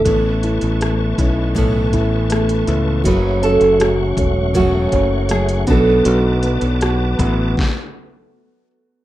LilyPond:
<<
  \new Staff \with { instrumentName = "Tonewheel organ" } { \time 4/4 \key a \major \tempo 4 = 80 << { cis'''1~ | cis'''2.~ cis'''8 d'''8~ | d'''2 r2 | } \\ { <b' a''>1 | <a fis''>2.~ <a fis''>8 <b' a''>8~ | <b' a''>2 r2 | } >> }
  \new Staff \with { instrumentName = "Nylon-string guitar" } { \time 4/4 \key a \major a'2.~ a'8 r8 | b'8 a'4. fis'4 gis'8 a'8~ | a'2.~ a'8 r8 | }
  \new Staff \with { instrumentName = "Grand piano" } { \time 4/4 \key a \major a8 e'8 a8 e'8 a8 e'8 a8 e'8 | fis8 cis'8 fis8 cis'8 fis8 cis'8 fis8 b8 | fis'8 b8 fis'8 b8 r2 | }
  \new Staff \with { instrumentName = "Steel-string acoustic guitar" } { \time 4/4 \key a \major <a, e b cis' e'>4. <b cis' e'>8 <a, e b cis' e'>2 | <fis, cis fis a cis' fis'>2 <fis, cis fis a cis' fis'>4. <b, fis a d' fis'>8~ | <b, fis a d' fis'>2 r2 | }
  \new Staff \with { instrumentName = "Fingered electric bass" } { \clef bass \time 4/4 \key a \major a,,8. a,,8. b,,4 a,,4 cis,8 | fis,,8. fis,,8. e,,4 fis,,4 b,,8 | b,,8. b,,8. a,,8 r2 | }
  \new DrumStaff \with { instrumentName = "Drums" } \drummode { \time 4/4 <hh bd>8 hh16 hh16 <hh ss>8 <hh bd>8 <hh bd>8 <hh bd>8 <hh ss>16 hh16 hh8 | <hh bd>8 hh16 hh16 <hh ss>8 <hh bd>8 <hh bd>8 <hh bd>8 <hh ss>16 hh16 <hh bd>8 | hh8 hh16 hh16 <hh ss>8 <hh bd>8 <bd sn>4 r4 | }
>>